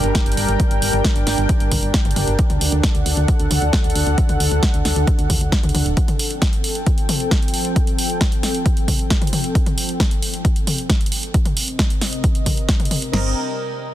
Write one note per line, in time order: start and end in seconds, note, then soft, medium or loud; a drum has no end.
0.00 0.12 G1 medium
0.00 2.35 G3 medium
0.00 5.93 D4 medium
0.00 2.35 A#4 medium
0.00 2.35 G5 medium
0.00 closed hi-hat medium
0.00 sub drop medium
0.15 kick loud
0.15 snare loud
0.15 closed hi-hat medium
0.26 0.35 G1 medium
0.26 closed hi-hat medium
0.32 closed hi-hat medium
0.37 0.46 G1 loud
0.37 open hi-hat loud
0.48 0.57 G1 medium
0.48 closed hi-hat medium
0.60 kick loud
0.60 closed hi-hat medium
0.71 0.80 G1 medium
0.71 closed hi-hat medium
0.82 0.91 G1 loud
0.82 open hi-hat loud
0.93 1.02 G1 medium
0.93 closed hi-hat medium
1.04 kick loud
1.04 snare loud
1.04 closed hi-hat medium
1.16 1.24 G1 medium
1.16 closed hi-hat medium
1.27 1.35 G1 loud
1.27 snare medium
1.27 open hi-hat loud
1.38 1.47 G1 medium
1.38 closed hi-hat soft
1.49 kick loud
1.49 closed hi-hat medium
1.60 1.69 G1 medium
1.60 closed hi-hat medium
1.72 1.80 G1 loud
1.72 kick medium
1.72 open hi-hat loud
1.72 mid tom medium
1.83 1.91 G1 medium
1.83 closed hi-hat medium
1.94 kick loud
1.94 snare loud
1.94 closed hi-hat medium
2.05 2.14 G1 medium
2.05 closed hi-hat soft
2.05 mid tom medium
2.11 closed hi-hat medium
2.16 2.25 G1 loud
2.16 open hi-hat loud
2.16 mid tom medium
2.28 2.36 G1 medium
2.28 closed hi-hat medium
2.39 5.93 D3 medium
2.39 5.93 A4 medium
2.39 5.93 F#5 medium
2.39 kick loud
2.39 closed hi-hat medium
2.50 2.59 D2 medium
2.50 closed hi-hat soft
2.50 mid tom medium
2.61 2.70 D2 loud
2.61 open hi-hat loud
2.72 2.81 D2 medium
2.72 closed hi-hat soft
2.83 kick loud
2.83 snare loud
2.83 closed hi-hat medium
2.95 3.03 D2 medium
2.95 closed hi-hat medium
3.06 3.15 D2 loud
3.06 open hi-hat loud
3.17 3.26 D2 medium
3.17 closed hi-hat soft
3.28 kick loud
3.28 closed hi-hat medium
3.39 3.48 D2 medium
3.39 closed hi-hat medium
3.51 3.59 D2 loud
3.51 open hi-hat loud
3.51 mid tom medium
3.62 3.71 D2 medium
3.62 closed hi-hat medium
3.73 kick loud
3.73 snare loud
3.73 closed hi-hat medium
3.84 3.93 D2 medium
3.84 closed hi-hat soft
3.90 closed hi-hat medium
3.95 4.04 D2 loud
3.95 open hi-hat loud
4.07 4.15 D2 medium
4.07 closed hi-hat medium
4.18 kick loud
4.18 closed hi-hat medium
4.29 4.38 D2 medium
4.29 closed hi-hat medium
4.29 mid tom medium
4.40 4.49 D2 loud
4.40 open hi-hat loud
4.51 4.60 D2 medium
4.51 closed hi-hat soft
4.63 kick loud
4.63 snare loud
4.63 closed hi-hat medium
4.74 4.83 D2 medium
4.74 closed hi-hat medium
4.85 4.94 D2 medium
4.85 snare medium
4.85 open hi-hat loud
4.96 5.05 D2 medium
4.96 closed hi-hat soft
5.07 kick loud
5.07 closed hi-hat medium
5.19 5.27 D2 medium
5.19 closed hi-hat soft
5.30 5.39 D#2 loud
5.30 kick medium
5.30 open hi-hat loud
5.30 mid tom medium
5.41 5.50 D2 medium
5.41 closed hi-hat medium
5.52 kick loud
5.52 snare loud
5.52 closed hi-hat medium
5.63 5.72 D2 medium
5.63 closed hi-hat soft
5.63 mid tom medium
5.69 closed hi-hat medium
5.75 5.83 D2 loud
5.75 open hi-hat loud
5.75 mid tom medium
5.86 5.94 D1 medium
5.86 closed hi-hat soft
5.97 11.30 F3 medium
5.97 11.30 C4 medium
5.97 11.30 A4 medium
5.97 11.30 G5 medium
5.97 kick loud
5.97 closed hi-hat medium
6.08 closed hi-hat medium
6.08 mid tom medium
6.19 open hi-hat loud
6.30 closed hi-hat soft
6.42 kick loud
6.42 snare loud
6.42 closed hi-hat medium
6.53 closed hi-hat medium
6.64 open hi-hat loud
6.75 closed hi-hat soft
6.87 kick loud
6.87 closed hi-hat medium
6.98 closed hi-hat soft
7.09 open hi-hat loud
7.09 mid tom medium
7.20 closed hi-hat medium
7.31 kick loud
7.31 snare loud
7.31 closed hi-hat medium
7.43 closed hi-hat soft
7.48 closed hi-hat medium
7.54 open hi-hat loud
7.65 closed hi-hat medium
7.76 kick loud
7.76 closed hi-hat medium
7.87 closed hi-hat medium
7.99 open hi-hat loud
8.10 closed hi-hat medium
8.21 kick loud
8.21 snare loud
8.21 closed hi-hat medium
8.32 closed hi-hat medium
8.43 snare medium
8.43 open hi-hat loud
8.55 closed hi-hat medium
8.66 kick loud
8.66 closed hi-hat medium
8.77 closed hi-hat soft
8.88 kick medium
8.88 open hi-hat loud
8.88 mid tom medium
8.99 closed hi-hat medium
9.10 kick loud
9.10 snare loud
9.10 closed hi-hat medium
9.22 closed hi-hat soft
9.22 mid tom medium
9.27 closed hi-hat medium
9.33 open hi-hat loud
9.33 mid tom medium
9.44 closed hi-hat medium
9.55 kick loud
9.55 closed hi-hat medium
9.66 closed hi-hat medium
9.66 mid tom medium
9.78 open hi-hat loud
9.89 closed hi-hat medium
10.00 kick loud
10.00 snare loud
10.00 closed hi-hat medium
10.11 closed hi-hat medium
10.22 open hi-hat loud
10.34 closed hi-hat medium
10.45 kick loud
10.45 closed hi-hat medium
10.56 closed hi-hat medium
10.67 open hi-hat loud
10.67 mid tom medium
10.78 closed hi-hat medium
10.90 kick loud
10.90 snare loud
10.90 closed hi-hat medium
11.01 closed hi-hat soft
11.06 closed hi-hat medium
11.12 open hi-hat loud
11.23 closed hi-hat medium
11.34 13.12 C3 medium
11.34 13.12 C4 medium
11.34 13.12 A#4 medium
11.34 13.12 D#5 medium
11.34 kick loud
11.34 closed hi-hat medium
11.45 closed hi-hat medium
11.45 mid tom medium
11.57 open hi-hat loud
11.68 closed hi-hat medium
11.79 kick loud
11.79 snare loud
11.79 closed hi-hat medium
11.90 closed hi-hat medium
12.01 snare medium
12.01 open hi-hat loud
12.13 closed hi-hat medium
12.24 kick loud
12.24 closed hi-hat medium
12.35 closed hi-hat medium
12.46 kick medium
12.46 open hi-hat loud
12.46 mid tom medium
12.57 closed hi-hat medium
12.69 kick loud
12.69 snare loud
12.69 closed hi-hat medium
12.80 closed hi-hat medium
12.80 mid tom medium
12.85 closed hi-hat medium
12.91 open hi-hat loud
12.91 mid tom medium
13.02 closed hi-hat medium
13.13 13.34 G1 medium
13.13 snare loud
13.13 crash medium